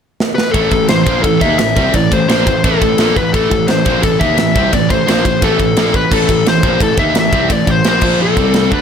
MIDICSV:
0, 0, Header, 1, 5, 480
1, 0, Start_track
1, 0, Key_signature, 0, "minor"
1, 0, Tempo, 347222
1, 762, Time_signature, 4, 2, 24, 8
1, 12186, End_track
2, 0, Start_track
2, 0, Title_t, "Lead electric guitar"
2, 0, Program_c, 0, 29
2, 488, Note_on_c, 0, 71, 88
2, 713, Note_off_c, 0, 71, 0
2, 718, Note_on_c, 0, 69, 89
2, 1224, Note_off_c, 0, 69, 0
2, 1229, Note_on_c, 0, 72, 95
2, 1691, Note_off_c, 0, 72, 0
2, 1697, Note_on_c, 0, 69, 93
2, 1933, Note_off_c, 0, 69, 0
2, 1952, Note_on_c, 0, 76, 100
2, 2179, Note_off_c, 0, 76, 0
2, 2195, Note_on_c, 0, 76, 97
2, 2688, Note_on_c, 0, 74, 104
2, 2695, Note_off_c, 0, 76, 0
2, 2946, Note_off_c, 0, 74, 0
2, 2946, Note_on_c, 0, 72, 96
2, 3151, Note_off_c, 0, 72, 0
2, 3168, Note_on_c, 0, 72, 98
2, 3648, Note_on_c, 0, 69, 91
2, 3662, Note_off_c, 0, 72, 0
2, 4379, Note_on_c, 0, 71, 86
2, 4389, Note_off_c, 0, 69, 0
2, 4606, Note_on_c, 0, 69, 93
2, 4620, Note_off_c, 0, 71, 0
2, 5072, Note_on_c, 0, 72, 98
2, 5101, Note_off_c, 0, 69, 0
2, 5556, Note_on_c, 0, 69, 92
2, 5574, Note_off_c, 0, 72, 0
2, 5784, Note_off_c, 0, 69, 0
2, 5802, Note_on_c, 0, 76, 99
2, 6027, Note_off_c, 0, 76, 0
2, 6051, Note_on_c, 0, 76, 94
2, 6495, Note_off_c, 0, 76, 0
2, 6552, Note_on_c, 0, 74, 96
2, 6780, Note_off_c, 0, 74, 0
2, 6785, Note_on_c, 0, 72, 86
2, 7022, Note_off_c, 0, 72, 0
2, 7039, Note_on_c, 0, 72, 92
2, 7515, Note_on_c, 0, 69, 89
2, 7516, Note_off_c, 0, 72, 0
2, 8232, Note_off_c, 0, 69, 0
2, 8237, Note_on_c, 0, 71, 80
2, 8445, Note_off_c, 0, 71, 0
2, 8483, Note_on_c, 0, 69, 90
2, 8957, Note_off_c, 0, 69, 0
2, 8966, Note_on_c, 0, 72, 89
2, 9434, Note_off_c, 0, 72, 0
2, 9440, Note_on_c, 0, 69, 84
2, 9646, Note_off_c, 0, 69, 0
2, 9664, Note_on_c, 0, 76, 94
2, 9900, Note_off_c, 0, 76, 0
2, 9942, Note_on_c, 0, 76, 93
2, 10391, Note_off_c, 0, 76, 0
2, 10397, Note_on_c, 0, 74, 96
2, 10627, Note_off_c, 0, 74, 0
2, 10660, Note_on_c, 0, 72, 83
2, 10878, Note_off_c, 0, 72, 0
2, 10905, Note_on_c, 0, 72, 87
2, 11322, Note_off_c, 0, 72, 0
2, 11366, Note_on_c, 0, 69, 79
2, 12015, Note_off_c, 0, 69, 0
2, 12077, Note_on_c, 0, 71, 83
2, 12186, Note_off_c, 0, 71, 0
2, 12186, End_track
3, 0, Start_track
3, 0, Title_t, "Distorted electric guitar"
3, 0, Program_c, 1, 30
3, 746, Note_on_c, 1, 45, 86
3, 755, Note_on_c, 1, 57, 103
3, 757, Note_on_c, 1, 52, 91
3, 987, Note_off_c, 1, 45, 0
3, 992, Note_off_c, 1, 57, 0
3, 993, Note_off_c, 1, 52, 0
3, 1006, Note_on_c, 1, 45, 68
3, 1010, Note_on_c, 1, 52, 73
3, 1197, Note_off_c, 1, 45, 0
3, 1199, Note_off_c, 1, 52, 0
3, 1249, Note_on_c, 1, 52, 64
3, 1251, Note_on_c, 1, 45, 62
3, 1439, Note_off_c, 1, 45, 0
3, 1439, Note_off_c, 1, 52, 0
3, 1461, Note_on_c, 1, 46, 88
3, 1469, Note_on_c, 1, 53, 89
3, 1479, Note_on_c, 1, 58, 103
3, 1701, Note_off_c, 1, 46, 0
3, 1707, Note_on_c, 1, 45, 61
3, 1709, Note_off_c, 1, 53, 0
3, 1715, Note_off_c, 1, 58, 0
3, 1717, Note_on_c, 1, 52, 72
3, 1908, Note_off_c, 1, 45, 0
3, 1913, Note_off_c, 1, 52, 0
3, 1934, Note_on_c, 1, 51, 84
3, 1939, Note_on_c, 1, 58, 88
3, 1953, Note_on_c, 1, 63, 90
3, 2183, Note_off_c, 1, 51, 0
3, 2185, Note_off_c, 1, 58, 0
3, 2191, Note_on_c, 1, 45, 67
3, 2192, Note_off_c, 1, 63, 0
3, 2197, Note_on_c, 1, 52, 69
3, 2390, Note_off_c, 1, 45, 0
3, 2393, Note_off_c, 1, 52, 0
3, 2433, Note_on_c, 1, 48, 89
3, 2437, Note_on_c, 1, 55, 93
3, 2449, Note_on_c, 1, 60, 96
3, 2672, Note_off_c, 1, 48, 0
3, 2672, Note_off_c, 1, 55, 0
3, 2677, Note_on_c, 1, 45, 62
3, 2678, Note_on_c, 1, 52, 73
3, 2680, Note_off_c, 1, 60, 0
3, 2874, Note_off_c, 1, 45, 0
3, 2874, Note_off_c, 1, 52, 0
3, 2922, Note_on_c, 1, 45, 69
3, 2927, Note_on_c, 1, 52, 71
3, 3116, Note_off_c, 1, 45, 0
3, 3119, Note_off_c, 1, 52, 0
3, 3157, Note_on_c, 1, 46, 92
3, 3171, Note_on_c, 1, 58, 91
3, 3173, Note_on_c, 1, 53, 81
3, 3394, Note_off_c, 1, 46, 0
3, 3402, Note_off_c, 1, 53, 0
3, 3402, Note_off_c, 1, 58, 0
3, 3414, Note_on_c, 1, 45, 64
3, 3417, Note_on_c, 1, 52, 70
3, 3602, Note_off_c, 1, 45, 0
3, 3604, Note_off_c, 1, 52, 0
3, 3651, Note_on_c, 1, 45, 88
3, 3658, Note_on_c, 1, 52, 92
3, 3665, Note_on_c, 1, 57, 104
3, 3874, Note_off_c, 1, 45, 0
3, 3880, Note_off_c, 1, 52, 0
3, 3889, Note_off_c, 1, 57, 0
3, 3891, Note_on_c, 1, 45, 56
3, 3896, Note_on_c, 1, 52, 72
3, 4081, Note_off_c, 1, 45, 0
3, 4083, Note_off_c, 1, 52, 0
3, 4117, Note_on_c, 1, 46, 88
3, 4124, Note_on_c, 1, 53, 97
3, 4136, Note_on_c, 1, 58, 108
3, 4355, Note_off_c, 1, 46, 0
3, 4358, Note_off_c, 1, 53, 0
3, 4364, Note_off_c, 1, 58, 0
3, 4370, Note_on_c, 1, 45, 62
3, 4379, Note_on_c, 1, 52, 67
3, 4560, Note_off_c, 1, 45, 0
3, 4565, Note_off_c, 1, 52, 0
3, 4615, Note_on_c, 1, 52, 97
3, 4619, Note_on_c, 1, 45, 93
3, 4629, Note_on_c, 1, 57, 97
3, 4822, Note_off_c, 1, 45, 0
3, 4828, Note_off_c, 1, 52, 0
3, 4839, Note_on_c, 1, 45, 60
3, 4845, Note_on_c, 1, 52, 71
3, 4851, Note_off_c, 1, 57, 0
3, 5035, Note_off_c, 1, 45, 0
3, 5038, Note_off_c, 1, 52, 0
3, 5088, Note_on_c, 1, 45, 63
3, 5092, Note_on_c, 1, 52, 67
3, 5279, Note_off_c, 1, 45, 0
3, 5281, Note_off_c, 1, 52, 0
3, 5328, Note_on_c, 1, 46, 95
3, 5336, Note_on_c, 1, 53, 104
3, 5340, Note_on_c, 1, 58, 98
3, 5560, Note_off_c, 1, 46, 0
3, 5564, Note_off_c, 1, 53, 0
3, 5566, Note_off_c, 1, 58, 0
3, 5573, Note_on_c, 1, 45, 67
3, 5584, Note_on_c, 1, 52, 77
3, 5762, Note_off_c, 1, 45, 0
3, 5767, Note_off_c, 1, 52, 0
3, 5804, Note_on_c, 1, 51, 85
3, 5810, Note_on_c, 1, 58, 93
3, 5816, Note_on_c, 1, 63, 95
3, 6038, Note_off_c, 1, 51, 0
3, 6041, Note_off_c, 1, 58, 0
3, 6044, Note_off_c, 1, 63, 0
3, 6060, Note_on_c, 1, 45, 66
3, 6066, Note_on_c, 1, 52, 73
3, 6245, Note_off_c, 1, 45, 0
3, 6248, Note_off_c, 1, 52, 0
3, 6298, Note_on_c, 1, 48, 94
3, 6307, Note_on_c, 1, 55, 80
3, 6309, Note_on_c, 1, 60, 100
3, 6524, Note_off_c, 1, 48, 0
3, 6529, Note_off_c, 1, 55, 0
3, 6529, Note_on_c, 1, 45, 62
3, 6530, Note_off_c, 1, 60, 0
3, 6536, Note_on_c, 1, 52, 69
3, 6720, Note_off_c, 1, 45, 0
3, 6723, Note_off_c, 1, 52, 0
3, 6770, Note_on_c, 1, 45, 65
3, 6778, Note_on_c, 1, 52, 70
3, 6960, Note_off_c, 1, 45, 0
3, 6964, Note_off_c, 1, 52, 0
3, 7014, Note_on_c, 1, 53, 92
3, 7016, Note_on_c, 1, 46, 82
3, 7024, Note_on_c, 1, 58, 85
3, 7243, Note_off_c, 1, 53, 0
3, 7244, Note_off_c, 1, 46, 0
3, 7248, Note_off_c, 1, 58, 0
3, 7269, Note_on_c, 1, 45, 61
3, 7271, Note_on_c, 1, 52, 77
3, 7449, Note_off_c, 1, 45, 0
3, 7450, Note_off_c, 1, 52, 0
3, 7499, Note_on_c, 1, 45, 97
3, 7501, Note_on_c, 1, 52, 91
3, 7519, Note_on_c, 1, 57, 102
3, 7708, Note_off_c, 1, 45, 0
3, 7716, Note_off_c, 1, 52, 0
3, 7724, Note_on_c, 1, 45, 62
3, 7732, Note_on_c, 1, 52, 68
3, 7735, Note_off_c, 1, 57, 0
3, 7917, Note_off_c, 1, 45, 0
3, 7921, Note_off_c, 1, 52, 0
3, 7974, Note_on_c, 1, 46, 83
3, 7984, Note_on_c, 1, 53, 94
3, 7989, Note_on_c, 1, 58, 100
3, 8202, Note_off_c, 1, 46, 0
3, 8207, Note_off_c, 1, 53, 0
3, 8209, Note_on_c, 1, 45, 59
3, 8210, Note_off_c, 1, 58, 0
3, 8224, Note_on_c, 1, 52, 69
3, 8399, Note_off_c, 1, 45, 0
3, 8406, Note_off_c, 1, 52, 0
3, 8451, Note_on_c, 1, 45, 87
3, 8460, Note_on_c, 1, 52, 91
3, 8468, Note_on_c, 1, 57, 89
3, 8681, Note_off_c, 1, 45, 0
3, 8685, Note_off_c, 1, 52, 0
3, 8689, Note_off_c, 1, 57, 0
3, 8710, Note_on_c, 1, 45, 60
3, 8718, Note_on_c, 1, 52, 75
3, 8889, Note_off_c, 1, 45, 0
3, 8893, Note_off_c, 1, 52, 0
3, 8940, Note_on_c, 1, 45, 63
3, 8944, Note_on_c, 1, 52, 69
3, 9124, Note_off_c, 1, 45, 0
3, 9126, Note_off_c, 1, 52, 0
3, 9174, Note_on_c, 1, 46, 87
3, 9186, Note_on_c, 1, 53, 96
3, 9189, Note_on_c, 1, 58, 101
3, 9402, Note_off_c, 1, 46, 0
3, 9408, Note_off_c, 1, 53, 0
3, 9409, Note_off_c, 1, 58, 0
3, 9412, Note_on_c, 1, 45, 61
3, 9420, Note_on_c, 1, 52, 68
3, 9600, Note_off_c, 1, 45, 0
3, 9604, Note_off_c, 1, 52, 0
3, 9654, Note_on_c, 1, 51, 79
3, 9665, Note_on_c, 1, 58, 88
3, 9671, Note_on_c, 1, 63, 98
3, 9881, Note_off_c, 1, 51, 0
3, 9887, Note_off_c, 1, 58, 0
3, 9890, Note_off_c, 1, 63, 0
3, 9893, Note_on_c, 1, 45, 60
3, 9905, Note_on_c, 1, 52, 70
3, 10080, Note_off_c, 1, 45, 0
3, 10086, Note_off_c, 1, 52, 0
3, 10138, Note_on_c, 1, 48, 84
3, 10145, Note_on_c, 1, 55, 92
3, 10148, Note_on_c, 1, 60, 86
3, 10363, Note_off_c, 1, 48, 0
3, 10367, Note_off_c, 1, 55, 0
3, 10369, Note_off_c, 1, 60, 0
3, 10386, Note_on_c, 1, 45, 60
3, 10397, Note_on_c, 1, 52, 68
3, 10567, Note_off_c, 1, 45, 0
3, 10572, Note_off_c, 1, 52, 0
3, 10614, Note_on_c, 1, 45, 69
3, 10619, Note_on_c, 1, 52, 69
3, 10800, Note_off_c, 1, 45, 0
3, 10803, Note_off_c, 1, 52, 0
3, 10857, Note_on_c, 1, 46, 79
3, 10874, Note_on_c, 1, 58, 96
3, 10875, Note_on_c, 1, 53, 91
3, 11076, Note_off_c, 1, 46, 0
3, 11087, Note_off_c, 1, 58, 0
3, 11088, Note_off_c, 1, 53, 0
3, 11093, Note_on_c, 1, 46, 90
3, 11104, Note_on_c, 1, 53, 95
3, 11104, Note_on_c, 1, 58, 97
3, 11560, Note_off_c, 1, 46, 0
3, 11566, Note_off_c, 1, 53, 0
3, 11566, Note_off_c, 1, 58, 0
3, 11574, Note_on_c, 1, 48, 86
3, 11587, Note_on_c, 1, 55, 94
3, 11587, Note_on_c, 1, 60, 103
3, 12040, Note_off_c, 1, 48, 0
3, 12047, Note_off_c, 1, 55, 0
3, 12047, Note_off_c, 1, 60, 0
3, 12050, Note_on_c, 1, 50, 84
3, 12061, Note_on_c, 1, 57, 93
3, 12062, Note_on_c, 1, 62, 97
3, 12186, Note_off_c, 1, 50, 0
3, 12186, Note_off_c, 1, 57, 0
3, 12186, Note_off_c, 1, 62, 0
3, 12186, End_track
4, 0, Start_track
4, 0, Title_t, "Picked electric bass"
4, 0, Program_c, 2, 34
4, 752, Note_on_c, 2, 33, 89
4, 974, Note_off_c, 2, 33, 0
4, 982, Note_on_c, 2, 33, 77
4, 1215, Note_off_c, 2, 33, 0
4, 1235, Note_on_c, 2, 33, 82
4, 1462, Note_off_c, 2, 33, 0
4, 1474, Note_on_c, 2, 34, 85
4, 1702, Note_off_c, 2, 34, 0
4, 1718, Note_on_c, 2, 33, 80
4, 1944, Note_off_c, 2, 33, 0
4, 1961, Note_on_c, 2, 39, 83
4, 2187, Note_off_c, 2, 39, 0
4, 2192, Note_on_c, 2, 33, 78
4, 2422, Note_off_c, 2, 33, 0
4, 2444, Note_on_c, 2, 36, 94
4, 2668, Note_off_c, 2, 36, 0
4, 2680, Note_on_c, 2, 33, 76
4, 2906, Note_off_c, 2, 33, 0
4, 2928, Note_on_c, 2, 33, 79
4, 3151, Note_off_c, 2, 33, 0
4, 3175, Note_on_c, 2, 34, 93
4, 3394, Note_off_c, 2, 34, 0
4, 3413, Note_on_c, 2, 33, 70
4, 3633, Note_off_c, 2, 33, 0
4, 3650, Note_on_c, 2, 33, 91
4, 3872, Note_off_c, 2, 33, 0
4, 3890, Note_on_c, 2, 33, 77
4, 4112, Note_off_c, 2, 33, 0
4, 4139, Note_on_c, 2, 34, 95
4, 4356, Note_off_c, 2, 34, 0
4, 4376, Note_on_c, 2, 33, 85
4, 4595, Note_off_c, 2, 33, 0
4, 4617, Note_on_c, 2, 33, 87
4, 4835, Note_off_c, 2, 33, 0
4, 4851, Note_on_c, 2, 33, 76
4, 5072, Note_off_c, 2, 33, 0
4, 5109, Note_on_c, 2, 33, 84
4, 5322, Note_off_c, 2, 33, 0
4, 5338, Note_on_c, 2, 34, 90
4, 5556, Note_off_c, 2, 34, 0
4, 5576, Note_on_c, 2, 33, 77
4, 5795, Note_off_c, 2, 33, 0
4, 5818, Note_on_c, 2, 39, 88
4, 6036, Note_off_c, 2, 39, 0
4, 6050, Note_on_c, 2, 33, 80
4, 6272, Note_off_c, 2, 33, 0
4, 6300, Note_on_c, 2, 36, 92
4, 6516, Note_off_c, 2, 36, 0
4, 6544, Note_on_c, 2, 33, 76
4, 6759, Note_off_c, 2, 33, 0
4, 6783, Note_on_c, 2, 33, 81
4, 6999, Note_off_c, 2, 33, 0
4, 7016, Note_on_c, 2, 34, 90
4, 7234, Note_off_c, 2, 34, 0
4, 7265, Note_on_c, 2, 33, 73
4, 7479, Note_off_c, 2, 33, 0
4, 7499, Note_on_c, 2, 33, 88
4, 7716, Note_off_c, 2, 33, 0
4, 7728, Note_on_c, 2, 33, 74
4, 7950, Note_off_c, 2, 33, 0
4, 7971, Note_on_c, 2, 34, 88
4, 8191, Note_off_c, 2, 34, 0
4, 8218, Note_on_c, 2, 33, 83
4, 8435, Note_off_c, 2, 33, 0
4, 8451, Note_on_c, 2, 33, 92
4, 8671, Note_off_c, 2, 33, 0
4, 8695, Note_on_c, 2, 33, 74
4, 8913, Note_off_c, 2, 33, 0
4, 8922, Note_on_c, 2, 33, 77
4, 9146, Note_off_c, 2, 33, 0
4, 9168, Note_on_c, 2, 34, 84
4, 9389, Note_off_c, 2, 34, 0
4, 9407, Note_on_c, 2, 33, 80
4, 9629, Note_off_c, 2, 33, 0
4, 9643, Note_on_c, 2, 39, 85
4, 9866, Note_off_c, 2, 39, 0
4, 9889, Note_on_c, 2, 33, 80
4, 10110, Note_off_c, 2, 33, 0
4, 10131, Note_on_c, 2, 36, 93
4, 10351, Note_off_c, 2, 36, 0
4, 10373, Note_on_c, 2, 33, 79
4, 10592, Note_off_c, 2, 33, 0
4, 10607, Note_on_c, 2, 33, 79
4, 10828, Note_off_c, 2, 33, 0
4, 10853, Note_on_c, 2, 34, 90
4, 11072, Note_off_c, 2, 34, 0
4, 11083, Note_on_c, 2, 34, 86
4, 11529, Note_off_c, 2, 34, 0
4, 11568, Note_on_c, 2, 36, 83
4, 12011, Note_off_c, 2, 36, 0
4, 12051, Note_on_c, 2, 38, 99
4, 12186, Note_off_c, 2, 38, 0
4, 12186, End_track
5, 0, Start_track
5, 0, Title_t, "Drums"
5, 282, Note_on_c, 9, 38, 66
5, 420, Note_off_c, 9, 38, 0
5, 529, Note_on_c, 9, 38, 78
5, 667, Note_off_c, 9, 38, 0
5, 751, Note_on_c, 9, 36, 96
5, 752, Note_on_c, 9, 51, 90
5, 889, Note_off_c, 9, 36, 0
5, 890, Note_off_c, 9, 51, 0
5, 986, Note_on_c, 9, 51, 73
5, 989, Note_on_c, 9, 36, 89
5, 1124, Note_off_c, 9, 51, 0
5, 1127, Note_off_c, 9, 36, 0
5, 1223, Note_on_c, 9, 51, 94
5, 1234, Note_on_c, 9, 38, 105
5, 1362, Note_off_c, 9, 51, 0
5, 1373, Note_off_c, 9, 38, 0
5, 1473, Note_on_c, 9, 36, 106
5, 1473, Note_on_c, 9, 51, 72
5, 1611, Note_off_c, 9, 36, 0
5, 1611, Note_off_c, 9, 51, 0
5, 1713, Note_on_c, 9, 36, 98
5, 1716, Note_on_c, 9, 51, 104
5, 1852, Note_off_c, 9, 36, 0
5, 1854, Note_off_c, 9, 51, 0
5, 1953, Note_on_c, 9, 51, 75
5, 1954, Note_on_c, 9, 36, 103
5, 2091, Note_off_c, 9, 51, 0
5, 2092, Note_off_c, 9, 36, 0
5, 2194, Note_on_c, 9, 51, 97
5, 2205, Note_on_c, 9, 38, 101
5, 2332, Note_off_c, 9, 51, 0
5, 2343, Note_off_c, 9, 38, 0
5, 2440, Note_on_c, 9, 51, 69
5, 2441, Note_on_c, 9, 36, 96
5, 2578, Note_off_c, 9, 51, 0
5, 2579, Note_off_c, 9, 36, 0
5, 2677, Note_on_c, 9, 51, 100
5, 2683, Note_on_c, 9, 36, 87
5, 2815, Note_off_c, 9, 51, 0
5, 2821, Note_off_c, 9, 36, 0
5, 2927, Note_on_c, 9, 36, 84
5, 2933, Note_on_c, 9, 51, 71
5, 3065, Note_off_c, 9, 36, 0
5, 3072, Note_off_c, 9, 51, 0
5, 3171, Note_on_c, 9, 51, 89
5, 3182, Note_on_c, 9, 38, 106
5, 3309, Note_off_c, 9, 51, 0
5, 3321, Note_off_c, 9, 38, 0
5, 3412, Note_on_c, 9, 36, 89
5, 3416, Note_on_c, 9, 51, 71
5, 3550, Note_off_c, 9, 36, 0
5, 3554, Note_off_c, 9, 51, 0
5, 3651, Note_on_c, 9, 51, 99
5, 3652, Note_on_c, 9, 36, 110
5, 3789, Note_off_c, 9, 51, 0
5, 3790, Note_off_c, 9, 36, 0
5, 3894, Note_on_c, 9, 36, 89
5, 3895, Note_on_c, 9, 51, 72
5, 4032, Note_off_c, 9, 36, 0
5, 4034, Note_off_c, 9, 51, 0
5, 4121, Note_on_c, 9, 51, 87
5, 4132, Note_on_c, 9, 38, 105
5, 4259, Note_off_c, 9, 51, 0
5, 4271, Note_off_c, 9, 38, 0
5, 4373, Note_on_c, 9, 51, 60
5, 4374, Note_on_c, 9, 36, 80
5, 4512, Note_off_c, 9, 51, 0
5, 4513, Note_off_c, 9, 36, 0
5, 4617, Note_on_c, 9, 36, 106
5, 4619, Note_on_c, 9, 51, 88
5, 4756, Note_off_c, 9, 36, 0
5, 4757, Note_off_c, 9, 51, 0
5, 4858, Note_on_c, 9, 36, 91
5, 4859, Note_on_c, 9, 51, 70
5, 4997, Note_off_c, 9, 36, 0
5, 4998, Note_off_c, 9, 51, 0
5, 5086, Note_on_c, 9, 51, 86
5, 5097, Note_on_c, 9, 38, 108
5, 5225, Note_off_c, 9, 51, 0
5, 5236, Note_off_c, 9, 38, 0
5, 5330, Note_on_c, 9, 51, 73
5, 5337, Note_on_c, 9, 36, 98
5, 5468, Note_off_c, 9, 51, 0
5, 5475, Note_off_c, 9, 36, 0
5, 5573, Note_on_c, 9, 51, 107
5, 5578, Note_on_c, 9, 36, 97
5, 5711, Note_off_c, 9, 51, 0
5, 5717, Note_off_c, 9, 36, 0
5, 5819, Note_on_c, 9, 36, 104
5, 5819, Note_on_c, 9, 51, 74
5, 5957, Note_off_c, 9, 36, 0
5, 5957, Note_off_c, 9, 51, 0
5, 6051, Note_on_c, 9, 51, 92
5, 6063, Note_on_c, 9, 38, 101
5, 6190, Note_off_c, 9, 51, 0
5, 6201, Note_off_c, 9, 38, 0
5, 6299, Note_on_c, 9, 36, 100
5, 6299, Note_on_c, 9, 51, 69
5, 6437, Note_off_c, 9, 36, 0
5, 6437, Note_off_c, 9, 51, 0
5, 6536, Note_on_c, 9, 51, 100
5, 6540, Note_on_c, 9, 36, 88
5, 6675, Note_off_c, 9, 51, 0
5, 6678, Note_off_c, 9, 36, 0
5, 6779, Note_on_c, 9, 36, 90
5, 6780, Note_on_c, 9, 51, 73
5, 6917, Note_off_c, 9, 36, 0
5, 6918, Note_off_c, 9, 51, 0
5, 7028, Note_on_c, 9, 51, 97
5, 7039, Note_on_c, 9, 38, 101
5, 7166, Note_off_c, 9, 51, 0
5, 7177, Note_off_c, 9, 38, 0
5, 7259, Note_on_c, 9, 36, 82
5, 7266, Note_on_c, 9, 51, 68
5, 7398, Note_off_c, 9, 36, 0
5, 7405, Note_off_c, 9, 51, 0
5, 7494, Note_on_c, 9, 51, 100
5, 7496, Note_on_c, 9, 36, 109
5, 7632, Note_off_c, 9, 51, 0
5, 7635, Note_off_c, 9, 36, 0
5, 7735, Note_on_c, 9, 36, 89
5, 7739, Note_on_c, 9, 51, 69
5, 7873, Note_off_c, 9, 36, 0
5, 7877, Note_off_c, 9, 51, 0
5, 7972, Note_on_c, 9, 51, 84
5, 7983, Note_on_c, 9, 38, 100
5, 8110, Note_off_c, 9, 51, 0
5, 8121, Note_off_c, 9, 38, 0
5, 8214, Note_on_c, 9, 36, 84
5, 8214, Note_on_c, 9, 51, 64
5, 8352, Note_off_c, 9, 36, 0
5, 8352, Note_off_c, 9, 51, 0
5, 8454, Note_on_c, 9, 36, 106
5, 8462, Note_on_c, 9, 49, 92
5, 8593, Note_off_c, 9, 36, 0
5, 8600, Note_off_c, 9, 49, 0
5, 8694, Note_on_c, 9, 36, 83
5, 8702, Note_on_c, 9, 51, 71
5, 8832, Note_off_c, 9, 36, 0
5, 8840, Note_off_c, 9, 51, 0
5, 8936, Note_on_c, 9, 51, 84
5, 8947, Note_on_c, 9, 38, 102
5, 9075, Note_off_c, 9, 51, 0
5, 9086, Note_off_c, 9, 38, 0
5, 9169, Note_on_c, 9, 36, 101
5, 9170, Note_on_c, 9, 51, 69
5, 9307, Note_off_c, 9, 36, 0
5, 9308, Note_off_c, 9, 51, 0
5, 9407, Note_on_c, 9, 36, 97
5, 9416, Note_on_c, 9, 51, 99
5, 9545, Note_off_c, 9, 36, 0
5, 9554, Note_off_c, 9, 51, 0
5, 9640, Note_on_c, 9, 51, 75
5, 9644, Note_on_c, 9, 36, 106
5, 9778, Note_off_c, 9, 51, 0
5, 9782, Note_off_c, 9, 36, 0
5, 9884, Note_on_c, 9, 51, 93
5, 9895, Note_on_c, 9, 38, 98
5, 10022, Note_off_c, 9, 51, 0
5, 10033, Note_off_c, 9, 38, 0
5, 10128, Note_on_c, 9, 36, 93
5, 10132, Note_on_c, 9, 51, 70
5, 10266, Note_off_c, 9, 36, 0
5, 10270, Note_off_c, 9, 51, 0
5, 10367, Note_on_c, 9, 36, 87
5, 10370, Note_on_c, 9, 51, 96
5, 10505, Note_off_c, 9, 36, 0
5, 10509, Note_off_c, 9, 51, 0
5, 10608, Note_on_c, 9, 36, 89
5, 10609, Note_on_c, 9, 51, 74
5, 10746, Note_off_c, 9, 36, 0
5, 10747, Note_off_c, 9, 51, 0
5, 10844, Note_on_c, 9, 51, 90
5, 10855, Note_on_c, 9, 38, 102
5, 10982, Note_off_c, 9, 51, 0
5, 10993, Note_off_c, 9, 38, 0
5, 11077, Note_on_c, 9, 49, 96
5, 11086, Note_on_c, 9, 36, 97
5, 11215, Note_off_c, 9, 49, 0
5, 11225, Note_off_c, 9, 36, 0
5, 11568, Note_on_c, 9, 36, 108
5, 11569, Note_on_c, 9, 51, 70
5, 11707, Note_off_c, 9, 36, 0
5, 11707, Note_off_c, 9, 51, 0
5, 11802, Note_on_c, 9, 51, 91
5, 11813, Note_on_c, 9, 38, 102
5, 11940, Note_off_c, 9, 51, 0
5, 11951, Note_off_c, 9, 38, 0
5, 12048, Note_on_c, 9, 51, 61
5, 12051, Note_on_c, 9, 36, 96
5, 12186, Note_off_c, 9, 36, 0
5, 12186, Note_off_c, 9, 51, 0
5, 12186, End_track
0, 0, End_of_file